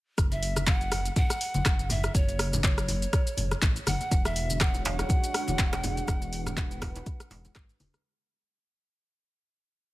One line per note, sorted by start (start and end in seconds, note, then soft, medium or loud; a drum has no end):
0.18 1.10 F#1 loud
0.18 kick loud
0.18 cross-stick medium
0.18 closed hi-hat medium
0.18 shaker medium
0.32 0.65 E5 loud
0.32 closed hi-hat soft
0.32 muted conga medium
0.32 shaker medium
0.43 open hi-hat loud
0.43 shaker medium
0.56 cross-stick medium
0.56 closed hi-hat soft
0.56 high conga medium
0.56 shaker medium
0.66 1.13 F#5 loud
0.66 kick loud
0.66 clap loud
0.66 closed hi-hat medium
0.66 muted conga soft
0.66 high conga medium
0.66 shaker medium
0.81 closed hi-hat soft
0.81 shaker medium
0.91 cross-stick medium
0.91 open hi-hat medium
0.91 muted conga medium
0.91 high conga medium
0.91 shaker medium
1.05 closed hi-hat soft
1.05 shaker medium
1.16 1.92 F#5 loud
1.16 kick loud
1.16 closed hi-hat medium
1.16 muted conga soft
1.16 low conga loud
1.16 shaker medium
1.30 cross-stick medium
1.30 closed hi-hat soft
1.30 shaker medium
1.41 open hi-hat medium
1.41 shaker medium
1.54 1.61 F#1 medium
1.54 closed hi-hat soft
1.54 muted conga medium
1.54 high conga medium
1.54 shaker medium
1.65 2.08 F#1 loud
1.65 kick loud
1.65 cross-stick loud
1.65 clap loud
1.65 closed hi-hat medium
1.65 shaker medium
1.79 closed hi-hat soft
1.79 muted conga soft
1.79 shaker medium
1.90 2.17 E5 loud
1.90 open hi-hat medium
1.90 low conga loud
1.90 shaker medium
2.04 cross-stick medium
2.04 closed hi-hat soft
2.04 muted conga medium
2.04 shaker medium
2.15 3.06 F#1 loud
2.15 2.63 C#5 loud
2.15 kick loud
2.15 closed hi-hat medium
2.15 shaker loud
2.29 closed hi-hat soft
2.29 muted conga soft
2.29 shaker medium
2.39 cross-stick loud
2.39 open hi-hat medium
2.39 shaker medium
2.53 closed hi-hat soft
2.53 low conga loud
2.53 shaker loud
2.64 3.57 C#5 loud
2.64 kick loud
2.64 clap loud
2.64 closed hi-hat medium
2.64 muted conga soft
2.64 high conga medium
2.64 shaker loud
2.78 cross-stick medium
2.78 closed hi-hat soft
2.78 shaker medium
2.88 open hi-hat medium
2.88 muted conga soft
2.88 low conga medium
2.88 shaker medium
3.02 closed hi-hat soft
3.02 shaker medium
3.13 kick loud
3.13 cross-stick loud
3.13 closed hi-hat medium
3.13 muted conga soft
3.13 shaker medium
3.27 closed hi-hat soft
3.27 shaker loud
3.37 3.54 F#1 medium
3.37 open hi-hat medium
3.37 low conga medium
3.37 shaker medium
3.51 cross-stick medium
3.51 closed hi-hat soft
3.51 muted conga medium
3.51 shaker medium
3.62 3.79 A1 loud
3.62 kick loud
3.62 clap loud
3.62 closed hi-hat medium
3.62 shaker loud
3.76 closed hi-hat soft
3.76 muted conga soft
3.76 shaker medium
3.87 3.95 F#1 loud
3.87 4.25 F#5 loud
3.87 cross-stick medium
3.87 open hi-hat medium
3.87 high conga loud
3.87 shaker medium
4.01 closed hi-hat soft
4.01 muted conga medium
4.01 shaker medium
4.11 5.03 E1 loud
4.11 8.01 G#3 medium
4.11 8.01 D4 medium
4.11 8.01 F#4 medium
4.11 6.06 C#5 medium
4.11 kick loud
4.11 closed hi-hat medium
4.11 djembe tone medium
4.11 shaker loud
4.25 4.62 E5 loud
4.25 cross-stick medium
4.25 closed hi-hat soft
4.25 muted conga soft
4.25 shaker medium
4.36 open hi-hat medium
4.36 shaker medium
4.50 closed hi-hat soft
4.50 high conga medium
4.50 shaker loud
4.60 4.85 F#5 loud
4.60 kick loud
4.60 cross-stick medium
4.60 clap loud
4.60 closed hi-hat medium
4.60 muted conga soft
4.60 high conga medium
4.60 shaker loud
4.74 closed hi-hat soft
4.74 djembe tone medium
4.74 shaker medium
4.85 4.97 F5 loud
4.85 open hi-hat medium
4.85 muted conga soft
4.85 djembe slap loud
4.85 high conga medium
4.85 shaker medium
4.97 7.52 F#5 loud
4.97 cross-stick medium
4.97 closed hi-hat soft
4.97 djembe tone medium
4.97 shaker medium
5.09 kick loud
5.09 closed hi-hat medium
5.09 muted conga soft
5.09 low conga loud
5.09 shaker medium
5.24 closed hi-hat soft
5.24 shaker medium
5.34 cross-stick loud
5.34 open hi-hat medium
5.34 shaker medium
5.48 5.55 E1 medium
5.48 closed hi-hat soft
5.48 muted conga medium
5.48 djembe tone medium
5.48 high conga medium
5.48 shaker medium
5.59 6.01 E1 loud
5.59 kick loud
5.59 clap loud
5.59 closed hi-hat medium
5.59 shaker loud
5.73 cross-stick medium
5.73 closed hi-hat soft
5.73 djembe slap loud
5.73 muted conga soft
5.73 shaker medium
5.84 open hi-hat medium
5.84 djembe tone medium
5.84 low conga loud
5.84 shaker medium
5.97 closed hi-hat soft
5.97 muted conga medium
5.97 shaker medium
6.07 7.00 E1 loud
6.07 8.03 B4 medium
6.07 kick loud
6.07 cross-stick medium
6.07 closed hi-hat medium
6.07 high conga medium
6.07 djembe tone medium
6.07 shaker loud
6.22 closed hi-hat soft
6.22 muted conga soft
6.22 shaker medium
6.33 open hi-hat medium
6.33 shaker medium
6.46 cross-stick medium
6.46 closed hi-hat soft
6.46 low conga loud
6.46 shaker medium
6.57 kick loud
6.57 clap loud
6.57 closed hi-hat medium
6.57 muted conga soft
6.57 high conga medium
6.57 shaker loud
6.71 closed hi-hat soft
6.71 djembe tone medium
6.71 shaker medium
6.81 kick medium
6.81 cross-stick medium
6.81 open hi-hat medium
6.81 muted conga medium
6.81 djembe slap medium
6.81 low conga medium
6.81 shaker medium
6.96 closed hi-hat soft
6.96 djembe tone loud
6.96 shaker medium
7.06 kick loud
7.06 closed hi-hat medium
7.06 muted conga soft
7.06 shaker medium
7.20 cross-stick medium
7.20 closed hi-hat soft
7.20 shaker medium
7.30 7.47 E1 medium
7.30 open hi-hat medium
7.30 djembe slap medium
7.30 low conga medium
7.30 shaker medium
7.45 closed hi-hat soft
7.45 muted conga soft
7.45 djembe tone medium
7.45 shaker medium
7.55 7.72 G#1 loud
7.55 kick loud
7.55 cross-stick medium
7.55 clap loud
7.55 closed hi-hat medium
7.55 shaker loud
7.69 closed hi-hat soft
7.69 muted conga soft
7.69 shaker medium
7.80 7.89 E1 loud
7.80 open hi-hat medium
7.80 high conga loud
7.80 djembe tone medium
7.80 shaker medium
7.94 cross-stick medium
7.94 closed hi-hat soft
7.94 muted conga soft
7.94 shaker medium